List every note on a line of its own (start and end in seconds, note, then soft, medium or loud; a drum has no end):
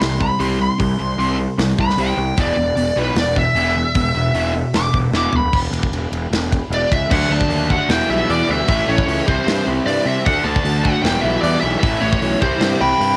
0.00 0.28 C2 loud
0.00 0.18 C3 medium
0.00 0.18 G3 medium
0.00 0.20 C6 loud
0.00 snare loud
0.00 open hi-hat medium
0.20 0.38 C3 medium
0.20 0.38 G3 medium
0.20 0.40 B5 medium
0.20 kick medium
0.39 0.68 C2 loud
0.39 0.58 C3 medium
0.39 0.59 G3 medium
0.39 0.59 C4 medium
0.39 0.60 C6 medium
0.39 open hi-hat medium
0.59 0.77 C3 medium
0.59 0.78 G3 medium
0.59 1.38 C6 medium
0.78 0.94 C2 loud
0.78 0.97 C3 medium
0.78 0.97 G3 medium
0.78 kick loud
0.78 open hi-hat medium
0.99 1.13 C2 medium
0.99 1.17 C3 medium
0.99 1.17 G3 medium
1.17 1.46 C2 medium
1.17 1.36 C3 medium
1.17 1.37 G3 loud
1.17 1.38 C4 loud
1.17 open hi-hat medium
1.37 1.56 C3 medium
1.37 1.56 G3 medium
1.58 1.72 C2 loud
1.58 1.76 C3 medium
1.58 1.76 G3 medium
1.58 snare loud
1.58 open hi-hat medium
1.78 1.92 C2 medium
1.78 1.96 C3 medium
1.78 1.96 G3 medium
1.78 1.99 B5 loud
1.78 kick medium
1.89 snare soft
1.98 2.12 C2 loud
1.98 2.17 C3 medium
1.98 2.17 G3 medium
1.98 2.17 C4 loud
1.98 2.38 G5 loud
1.98 open hi-hat medium
2.17 2.31 C2 medium
2.17 2.36 C3 medium
2.17 2.36 G3 medium
2.37 2.51 E1 medium
2.37 2.56 E2 medium
2.37 2.56 B2 medium
2.37 2.56 E3 medium
2.37 2.96 D5 medium
2.37 kick loud
2.37 open hi-hat medium
2.57 2.71 E1 loud
2.57 2.75 E2 medium
2.57 2.75 B2 medium
2.76 2.90 E1 medium
2.76 2.95 E2 medium
2.76 2.95 B2 medium
2.76 open hi-hat medium
2.96 3.10 B1 medium
2.96 3.14 E2 medium
2.96 3.14 B2 medium
2.96 3.16 E3 medium
2.96 3.17 B4 loud
3.15 3.43 E1 loud
3.15 3.34 E2 medium
3.15 3.34 B2 medium
3.15 3.38 D5 loud
3.15 snare loud
3.15 open hi-hat medium
3.36 3.54 E2 medium
3.36 3.54 B2 medium
3.36 4.52 E5 loud
3.36 kick medium
3.55 3.83 E1 medium
3.55 3.74 E2 medium
3.55 3.74 B2 medium
3.55 3.75 E3 loud
3.55 open hi-hat medium
3.76 3.93 E2 medium
3.76 3.93 B2 medium
3.95 4.09 E1 loud
3.95 4.13 E2 medium
3.95 4.13 B2 medium
3.95 kick loud
3.95 open hi-hat medium
4.14 4.29 E1 loud
4.14 4.33 E2 medium
4.14 4.33 B2 medium
4.34 4.62 E1 loud
4.34 4.53 E2 medium
4.34 4.53 B2 loud
4.34 4.54 E3 loud
4.34 open hi-hat medium
4.54 4.72 E2 medium
4.54 4.72 B2 medium
4.74 4.88 E1 loud
4.74 4.92 E2 medium
4.74 4.92 B2 medium
4.74 4.95 D6 loud
4.74 snare loud
4.74 open hi-hat medium
4.93 5.07 E1 medium
4.93 5.11 E2 medium
4.93 5.11 B2 medium
4.93 kick medium
5.12 5.27 E1 loud
5.12 5.32 E2 medium
5.12 5.33 B2 loud
5.12 5.33 E3 loud
5.12 snare medium
5.17 5.35 D6 loud
5.33 5.47 E1 medium
5.33 5.52 E2 medium
5.33 5.52 B2 medium
5.33 floor tom medium
5.37 5.54 B5 loud
5.53 5.66 E1 medium
5.53 kick loud
5.53 crash loud
5.71 5.85 E1 medium
5.71 ride medium
5.83 kick medium
5.92 6.05 E1 medium
5.92 ride loud
6.12 6.25 E1 loud
6.12 ride medium
6.31 6.58 E1 loud
6.31 snare loud
6.31 ride loud
6.53 kick medium
6.53 ride medium
6.70 6.84 E1 loud
6.70 6.93 D5 medium
6.70 ride loud
6.91 7.04 C#2 medium
6.91 7.12 E5 medium
6.91 kick medium
6.91 ride medium
7.10 7.23 D2 loud
7.10 7.88 D3 medium
7.10 7.30 D3 medium
7.10 7.30 F#3 loud
7.10 7.31 A3 loud
7.10 7.89 A3 medium
7.10 7.32 D4 loud
7.10 7.90 D4 loud
7.10 7.32 F#5 medium
7.10 kick loud
7.10 crash loud
7.30 7.42 D2 medium
7.30 7.48 D3 loud
7.30 7.49 F#3 loud
7.30 7.49 A3 loud
7.30 7.49 D4 loud
7.30 7.72 A5 medium
7.41 kick medium
7.49 7.74 D#2 medium
7.49 7.68 D3 medium
7.49 7.69 F#3 medium
7.49 7.69 A3 medium
7.49 7.69 D4 medium
7.49 open hi-hat medium
7.69 7.88 D3 medium
7.69 7.88 F#3 medium
7.69 7.89 A3 medium
7.69 7.89 D4 medium
7.69 7.90 F#5 loud
7.69 kick medium
7.89 8.01 E1 loud
7.89 8.67 E2 loud
7.89 8.67 B2 loud
7.89 8.09 E3 loud
7.89 8.68 E3 medium
7.89 8.09 G3 loud
7.89 8.10 B3 loud
7.89 8.10 E4 loud
7.89 8.10 G5 loud
7.89 snare loud
7.89 open hi-hat medium
8.09 8.21 B1 medium
8.09 8.26 E3 medium
8.09 8.27 G3 medium
8.09 8.27 B3 loud
8.09 8.28 E4 medium
8.09 8.30 E5 medium
8.28 8.41 E2 loud
8.28 8.48 E3 medium
8.28 8.48 G3 medium
8.28 8.48 B3 medium
8.28 8.49 E4 medium
8.28 8.51 D5 medium
8.28 open hi-hat medium
8.49 8.61 D2 medium
8.49 8.67 E3 medium
8.49 8.68 G3 loud
8.49 8.68 B3 loud
8.49 8.68 E4 loud
8.49 8.68 E5 medium
8.68 8.80 A1 medium
8.68 9.25 A2 medium
8.68 8.86 A2 loud
8.68 8.87 E3 loud
8.68 9.27 E3 medium
8.68 8.87 A3 loud
8.68 9.28 A3 loud
8.68 8.87 C#4 loud
8.68 8.88 E4 loud
8.68 8.89 E5 medium
8.68 kick loud
8.68 open hi-hat medium
8.87 9.00 A1 medium
8.87 9.06 A2 loud
8.87 9.07 E3 medium
8.87 9.07 A3 loud
8.87 9.08 C#4 loud
8.87 9.08 E4 loud
8.87 9.27 C#5 medium
8.98 kick medium
9.07 9.20 C#2 medium
9.07 9.26 A2 loud
9.07 9.26 E3 medium
9.07 9.27 A3 loud
9.07 9.27 C#4 medium
9.07 9.27 E4 loud
9.07 open hi-hat medium
9.26 9.40 C2 loud
9.26 10.24 C3 medium
9.26 9.45 C3 medium
9.26 9.46 E3 loud
9.26 10.25 G3 medium
9.26 9.47 G3 medium
9.26 9.46 C4 medium
9.26 10.25 C4 loud
9.26 9.47 E4 loud
9.26 9.64 C5 loud
9.26 kick loud
9.46 9.59 G2 loud
9.46 9.65 C3 loud
9.46 9.65 E3 loud
9.46 9.66 G3 loud
9.46 9.66 C4 loud
9.46 9.67 E4 loud
9.46 snare loud
9.46 open hi-hat medium
9.66 9.79 C2 medium
9.66 9.84 C3 medium
9.66 9.84 E3 loud
9.66 9.85 G3 loud
9.66 9.85 C4 medium
9.66 9.85 E4 loud
9.85 9.98 G2 loud
9.85 10.04 C3 medium
9.85 10.05 E3 medium
9.85 10.06 G3 medium
9.85 10.06 C4 medium
9.85 10.06 E4 medium
9.85 10.07 D5 medium
9.85 open hi-hat medium
10.06 10.25 C3 medium
10.06 10.18 C3 loud
10.06 10.24 E3 medium
10.06 10.25 G3 loud
10.06 10.25 C4 medium
10.06 10.25 E4 loud
10.06 10.25 E5 medium
10.25 10.38 D2 loud
10.25 10.42 D3 loud
10.25 11.03 D3 medium
10.25 10.43 A3 loud
10.25 11.04 A3 medium
10.25 10.43 D4 loud
10.25 11.05 D4 loud
10.25 10.44 F#4 loud
10.25 10.46 F#5 medium
10.25 kick loud
10.25 open hi-hat medium
10.43 10.57 D2 loud
10.43 10.63 D3 loud
10.43 10.63 A3 loud
10.43 10.64 D4 loud
10.43 10.64 F#4 loud
10.43 10.85 A5 loud
10.56 kick medium
10.64 10.89 D2 medium
10.64 10.82 D3 medium
10.64 10.83 A3 loud
10.64 10.83 D4 medium
10.64 10.84 F#4 loud
10.64 open hi-hat medium
10.83 11.03 D3 medium
10.83 11.03 A3 loud
10.83 11.03 D4 medium
10.83 11.04 F#4 loud
10.83 11.02 F#5 loud
10.83 kick medium
11.03 11.16 E1 loud
11.03 11.81 E2 loud
11.03 11.82 B2 loud
11.03 11.22 E3 loud
11.03 11.83 E3 loud
11.03 11.23 G3 loud
11.03 11.23 B3 loud
11.03 11.23 E4 loud
11.03 11.21 G5 loud
11.03 snare loud
11.03 open hi-hat medium
11.21 11.36 B1 medium
11.21 11.42 E3 medium
11.21 11.42 G3 medium
11.21 11.43 B3 medium
11.21 11.43 E4 loud
11.21 11.41 E5 loud
11.41 11.55 E2 loud
11.41 11.61 E3 medium
11.41 11.62 G3 medium
11.41 11.62 B3 medium
11.41 11.63 E4 medium
11.41 11.61 D5 loud
11.41 open hi-hat medium
11.61 11.75 B1 loud
11.61 11.82 E3 medium
11.61 11.82 G3 loud
11.61 11.82 B3 medium
11.61 11.82 E4 loud
11.61 11.79 E5 loud
11.80 11.95 A1 loud
11.80 12.00 A2 loud
11.80 12.41 A2 medium
11.80 12.00 E3 loud
11.80 12.01 A3 loud
11.80 12.01 C#4 loud
11.80 12.01 E4 loud
11.80 12.02 E5 loud
11.80 kick loud
11.80 open hi-hat medium
11.84 12.42 E3 loud
11.84 12.42 A3 medium
12.01 12.14 A1 loud
12.01 12.20 A2 loud
12.01 12.21 E3 loud
12.01 12.21 A3 medium
12.01 12.21 C#4 loud
12.01 12.22 E4 loud
12.01 12.41 C#5 medium
12.13 kick medium
12.21 12.34 B1 loud
12.21 12.41 A2 medium
12.21 12.41 E3 medium
12.21 12.41 A3 medium
12.21 12.41 C#4 medium
12.21 12.41 E4 medium
12.21 open hi-hat medium
12.41 12.54 C2 loud
12.41 13.17 C3 medium
12.41 12.62 C3 loud
12.41 12.62 E3 loud
12.41 12.63 G3 medium
12.41 13.17 G3 loud
12.41 12.63 C4 loud
12.41 13.17 C4 medium
12.41 12.63 E4 loud
12.41 12.82 C5 loud
12.41 kick loud
12.61 12.73 G2 medium
12.61 12.81 C3 loud
12.61 12.81 E3 loud
12.61 12.82 G3 loud
12.61 12.82 C4 loud
12.61 12.82 E4 loud
12.61 snare loud
12.61 open hi-hat medium
12.81 12.93 C2 medium
12.81 13.01 C3 medium
12.81 13.01 E3 medium
12.81 13.01 G3 medium
12.81 13.02 C4 loud
12.81 13.02 E4 loud
12.81 13.17 G5 loud
12.81 13.17 B5 loud
13.00 13.13 G2 medium
13.00 13.17 C3 medium
13.00 13.17 E3 medium
13.00 13.17 G3 medium
13.00 13.17 C4 medium
13.00 13.17 E4 medium
13.00 open hi-hat medium